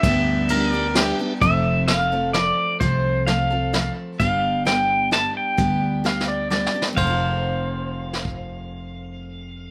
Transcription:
0.00 1.10 D2 medium
0.00 0.50 G2 medium
0.00 0.50 D3 medium
0.00 0.71 E5 loud
0.00 kick loud
0.00 ride medium
0.04 0.48 G3 medium
0.04 0.49 B3 loud
0.04 0.50 D4 loud
0.04 0.50 G4 loud
0.49 0.73 G3 medium
0.49 0.73 B3 medium
0.49 0.88 B3 medium
0.49 0.88 D4 medium
0.49 0.73 D4 medium
0.49 0.88 G4 medium
0.49 0.72 G4 medium
0.49 0.95 A#4 loud
0.49 0.88 D5 medium
0.49 ride medium
0.71 0.95 G3 soft
0.71 0.96 B3 medium
0.71 0.96 D4 medium
0.71 0.96 G4 medium
0.71 1.15 D5 loud
0.95 1.19 G3 medium
0.95 1.19 B3 medium
0.95 1.34 D4 medium
0.95 1.19 D4 medium
0.95 1.34 G4 medium
0.95 1.19 G4 medium
0.95 1.18 G4 medium
0.95 1.34 B4 medium
0.95 1.34 E5 medium
0.95 snare medium
0.95 ride medium
1.19 1.42 G3 soft
1.19 1.43 B3 soft
1.19 1.43 D4 medium
1.19 1.42 G4 medium
1.41 2.49 F1 medium
1.41 1.88 F2 medium
1.41 1.89 C3 medium
1.41 1.87 F3 medium
1.41 1.88 A3 medium
1.41 1.89 C4 medium
1.41 1.89 A4 medium
1.41 1.90 E5 loud
1.41 kick loud
1.41 closed hi-hat medium
1.88 2.12 F3 medium
1.88 2.12 A3 medium
1.88 2.11 C4 medium
1.88 2.11 A4 medium
1.88 2.33 F5 loud
1.88 snare medium
1.88 closed hi-hat medium
2.12 2.33 F3 soft
2.12 2.34 A3 soft
2.12 2.34 C4 soft
2.12 2.35 A4 soft
2.33 2.80 F3 medium
2.33 2.80 A3 medium
2.33 2.80 C4 medium
2.33 2.81 A4 medium
2.33 2.77 D5 medium
2.33 snare medium
2.33 closed hi-hat medium
2.80 3.88 C2 medium
2.80 3.27 F2 medium
2.80 3.27 C3 medium
2.80 3.26 F3 medium
2.80 3.27 A3 medium
2.80 3.28 C4 medium
2.80 3.28 A4 medium
2.80 3.28 C5 medium
2.80 kick loud
2.80 closed hi-hat medium
3.27 3.50 F3 medium
3.27 3.51 A3 medium
3.27 3.50 C4 medium
3.27 3.49 A4 medium
3.27 3.92 F5 medium
3.27 snare medium
3.27 closed hi-hat medium
3.50 3.72 F3 soft
3.50 3.73 A3 soft
3.50 3.73 C4 soft
3.50 3.74 A4 soft
3.73 4.20 F3 medium
3.73 4.20 A3 medium
3.73 4.20 C4 medium
3.73 4.21 A4 medium
3.73 snare medium
3.73 closed hi-hat medium
4.20 5.27 G1 medium
4.20 4.66 G2 medium
4.20 4.66 D3 medium
4.20 4.64 G3 medium
4.20 4.65 B3 medium
4.20 4.66 D4 medium
4.20 4.66 G4 medium
4.20 4.63 F5 medium
4.20 kick loud
4.20 closed hi-hat medium
4.65 5.10 G3 medium
4.65 5.11 B3 medium
4.65 5.12 D4 medium
4.65 5.12 G4 medium
4.65 5.10 G5 medium
4.65 snare medium
4.65 closed hi-hat medium
5.11 5.57 G3 medium
5.11 5.57 B3 medium
5.11 5.58 D4 medium
5.11 5.58 G4 medium
5.11 5.34 A5 loud
5.11 snare medium
5.11 closed hi-hat soft
5.37 6.71 G5 medium
5.57 6.66 D2 medium
5.57 6.04 G2 medium
5.57 6.05 D3 medium
5.57 6.03 G3 medium
5.57 6.04 B3 medium
5.57 6.04 D4 medium
5.57 6.05 G4 medium
5.57 kick loud
5.57 closed hi-hat medium
6.04 6.49 G3 medium
6.04 6.50 B3 medium
6.04 6.50 D4 medium
6.04 6.51 G4 medium
6.04 6.28 F5 medium
6.04 snare medium
6.20 snare medium
6.28 6.50 D5 medium
6.50 6.74 G3 medium
6.50 6.74 B3 medium
6.50 6.74 D4 medium
6.50 6.73 G4 medium
6.50 6.85 D5 medium
6.50 snare medium
6.66 snare medium
6.74 6.99 G3 soft
6.74 6.98 B3 soft
6.74 6.98 D4 soft
6.74 6.97 G4 soft
6.82 snare medium
6.93 9.71 F2 medium
6.93 9.71 F5 medium
6.97 9.71 F1 medium
6.97 9.71 C3 medium
6.97 9.71 F3 medium
6.97 9.71 C5 loud
6.97 kick medium
6.97 crash medium
7.04 9.71 A3 medium
7.04 9.71 C4 medium
7.10 9.71 F4 medium
8.13 snare medium
8.25 kick medium

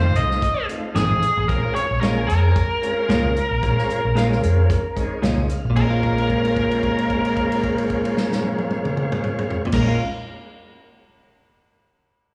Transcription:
0.00 0.16 F1 loud
0.00 0.45 A3 medium
0.00 0.46 C4 medium
0.00 0.46 D#4 medium
0.00 0.46 F4 medium
0.00 0.17 C5 medium
0.15 0.37 C2 medium
0.15 0.66 D#5 medium
0.15 closed hi-hat medium
0.31 snare soft
0.42 kick loud
0.42 closed hi-hat medium
0.68 1.25 A3 medium
0.68 1.25 C4 medium
0.68 1.25 D#4 medium
0.68 1.26 F4 medium
0.68 closed hi-hat medium
0.95 1.08 A1 medium
0.95 1.12 F2 medium
0.95 1.13 D#3 medium
0.95 1.13 A3 medium
0.95 1.14 C4 medium
0.95 1.51 G#4 medium
0.95 snare loud
0.95 closed hi-hat medium
1.10 1.20 A1 medium
1.22 closed hi-hat medium
1.37 1.47 A1 loud
1.48 1.61 A#1 loud
1.48 1.87 G#3 medium
1.48 1.87 C4 medium
1.48 1.88 C#4 medium
1.48 1.88 F4 medium
1.48 1.74 A#4 medium
1.48 kick medium
1.48 closed hi-hat medium
1.75 2.01 C#5 medium
1.75 muted picked electric bass stroke soft
1.75 closed hi-hat medium
1.91 2.29 A#1 medium
2.01 2.19 A#2 medium
2.01 2.59 G#3 medium
2.01 2.20 G#3 medium
2.01 2.59 C4 medium
2.01 2.59 C#4 medium
2.01 2.20 C#4 medium
2.01 2.20 F4 medium
2.01 2.59 G#4 medium
2.01 2.27 A#4 medium
2.01 snare medium
2.01 closed hi-hat medium
2.28 2.51 F2 medium
2.28 5.18 A#4 medium
2.28 closed hi-hat medium
2.56 kick loud
2.56 closed hi-hat medium
2.81 3.39 G#3 medium
2.81 3.39 C4 medium
2.81 3.39 C#4 medium
2.81 3.39 F4 medium
2.81 closed hi-hat medium
3.09 3.21 C#2 medium
3.09 3.26 A#2 medium
3.09 3.27 G#3 medium
3.09 3.27 C#4 medium
3.09 3.27 F4 loud
3.09 snare loud
3.09 closed hi-hat medium
3.24 3.34 C#2 loud
3.36 closed hi-hat medium
3.51 3.60 A#1 medium
3.62 3.75 A#1 medium
3.62 4.01 G#3 medium
3.62 4.01 C4 medium
3.62 4.01 C#4 medium
3.62 4.02 F4 medium
3.62 kick medium
3.62 closed hi-hat medium
3.79 snare soft
3.89 muted picked electric bass stroke soft
3.89 closed hi-hat medium
4.05 4.43 A#1 medium
4.15 4.33 A#2 medium
4.15 4.73 G#3 medium
4.15 4.33 G#3 medium
4.15 4.73 C4 medium
4.15 4.73 C#4 medium
4.15 4.34 C#4 medium
4.15 4.73 F4 medium
4.15 4.34 F4 medium
4.15 snare medium
4.15 closed hi-hat medium
4.32 snare soft
4.43 4.64 F2 medium
4.43 closed hi-hat medium
4.70 kick loud
4.70 closed hi-hat medium
4.96 5.53 G#3 medium
4.96 5.53 C4 medium
4.96 5.53 C#4 medium
4.96 5.53 D#4 medium
4.96 kick medium
4.96 closed hi-hat medium
5.22 5.35 C#2 medium
5.22 5.40 A#2 medium
5.22 5.40 G#3 medium
5.22 5.41 C#4 medium
5.22 5.41 F4 medium
5.22 5.48 D#5 medium
5.22 snare loud
5.22 closed hi-hat medium
5.38 5.47 C#2 medium
5.49 5.74 F5 medium
5.49 closed hi-hat medium
5.65 5.74 A#1 medium
5.70 9.64 A#2 medium
5.76 9.63 A#1 medium
5.76 9.63 G#3 medium
5.76 9.70 G#3 medium
5.76 9.63 C4 medium
5.76 9.63 C#4 medium
5.76 9.63 F4 medium
5.76 9.63 A#4 medium
5.76 kick medium
5.76 crash medium
5.90 9.74 F4 medium
6.03 kick medium
6.03 crash soft
6.18 crash soft
6.30 kick medium
6.30 crash soft
6.45 crash soft
6.56 kick medium
6.56 crash soft
6.71 crash soft
6.83 kick medium
6.83 crash soft
6.98 crash soft
7.10 kick medium
7.10 crash soft
7.25 crash soft
7.37 kick medium
7.37 crash soft
7.52 crash medium
7.63 kick medium
7.63 crash soft
7.78 crash soft
7.90 kick soft
7.90 crash soft
8.05 crash medium
8.17 snare medium
8.32 snare medium
8.44 high tom medium
8.59 high tom medium
8.71 high tom loud
8.85 mid tom loud
8.97 mid tom medium
9.12 mid tom loud
9.24 mid tom medium
9.39 mid tom medium
9.51 floor tom medium
9.65 9.94 A#2 medium
9.65 floor tom loud
9.72 9.95 A#1 medium
9.72 9.96 G#3 medium
9.72 9.98 G#3 medium
9.72 9.96 C4 medium
9.72 9.96 C#4 medium
9.72 9.96 F4 medium
9.72 9.96 A#4 medium
9.72 kick loud
9.72 snare loud
9.72 crash loud
9.82 10.02 C#4 medium
9.88 10.05 F4 medium

